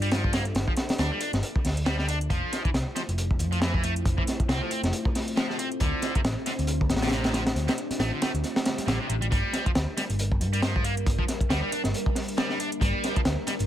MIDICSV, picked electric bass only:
0, 0, Header, 1, 3, 480
1, 0, Start_track
1, 0, Tempo, 437956
1, 608, Time_signature, 4, 2, 24, 8
1, 14979, End_track
2, 0, Start_track
2, 0, Title_t, "Picked electric bass"
2, 0, Program_c, 0, 34
2, 0, Note_on_c, 0, 43, 79
2, 568, Note_off_c, 0, 43, 0
2, 603, Note_on_c, 0, 31, 100
2, 712, Note_off_c, 0, 31, 0
2, 1084, Note_on_c, 0, 38, 100
2, 1192, Note_off_c, 0, 38, 0
2, 1460, Note_on_c, 0, 31, 82
2, 1543, Note_off_c, 0, 31, 0
2, 1805, Note_on_c, 0, 38, 83
2, 2489, Note_off_c, 0, 38, 0
2, 2523, Note_on_c, 0, 29, 97
2, 2631, Note_off_c, 0, 29, 0
2, 3000, Note_on_c, 0, 36, 96
2, 3110, Note_off_c, 0, 36, 0
2, 3379, Note_on_c, 0, 29, 81
2, 3724, Note_on_c, 0, 41, 80
2, 3740, Note_off_c, 0, 29, 0
2, 4409, Note_off_c, 0, 41, 0
2, 4443, Note_on_c, 0, 29, 102
2, 4551, Note_off_c, 0, 29, 0
2, 4914, Note_on_c, 0, 36, 99
2, 5027, Note_off_c, 0, 36, 0
2, 5294, Note_on_c, 0, 29, 86
2, 5380, Note_off_c, 0, 29, 0
2, 6362, Note_on_c, 0, 38, 97
2, 6471, Note_off_c, 0, 38, 0
2, 6841, Note_on_c, 0, 33, 98
2, 6951, Note_off_c, 0, 33, 0
2, 7221, Note_on_c, 0, 38, 79
2, 7563, Note_on_c, 0, 33, 78
2, 7579, Note_off_c, 0, 38, 0
2, 8248, Note_off_c, 0, 33, 0
2, 8280, Note_on_c, 0, 38, 100
2, 8390, Note_off_c, 0, 38, 0
2, 8761, Note_on_c, 0, 33, 100
2, 8870, Note_off_c, 0, 33, 0
2, 9142, Note_on_c, 0, 38, 84
2, 9224, Note_off_c, 0, 38, 0
2, 9724, Note_on_c, 0, 33, 86
2, 9832, Note_off_c, 0, 33, 0
2, 9969, Note_on_c, 0, 33, 90
2, 10074, Note_off_c, 0, 33, 0
2, 10106, Note_on_c, 0, 33, 75
2, 10186, Note_off_c, 0, 33, 0
2, 10210, Note_on_c, 0, 31, 98
2, 10315, Note_off_c, 0, 31, 0
2, 10690, Note_on_c, 0, 38, 99
2, 10795, Note_off_c, 0, 38, 0
2, 11067, Note_on_c, 0, 31, 86
2, 11405, Note_on_c, 0, 43, 79
2, 11421, Note_off_c, 0, 31, 0
2, 12089, Note_off_c, 0, 43, 0
2, 12124, Note_on_c, 0, 31, 99
2, 12232, Note_off_c, 0, 31, 0
2, 12606, Note_on_c, 0, 38, 98
2, 12713, Note_off_c, 0, 38, 0
2, 12985, Note_on_c, 0, 31, 81
2, 13065, Note_off_c, 0, 31, 0
2, 14039, Note_on_c, 0, 31, 96
2, 14150, Note_off_c, 0, 31, 0
2, 14528, Note_on_c, 0, 38, 104
2, 14634, Note_off_c, 0, 38, 0
2, 14906, Note_on_c, 0, 31, 86
2, 14979, Note_off_c, 0, 31, 0
2, 14979, End_track
3, 0, Start_track
3, 0, Title_t, "Muted picked electric bass strokes"
3, 980, Note_on_c, 9, 29, 41
3, 1090, Note_off_c, 9, 29, 0
3, 4820, Note_on_c, 9, 29, 44
3, 4930, Note_off_c, 9, 29, 0
3, 8661, Note_on_c, 9, 29, 43
3, 8771, Note_off_c, 9, 29, 0
3, 9624, Note_on_c, 9, 29, 41
3, 9733, Note_off_c, 9, 29, 0
3, 12498, Note_on_c, 9, 29, 44
3, 12608, Note_off_c, 9, 29, 0
3, 14979, End_track
0, 0, End_of_file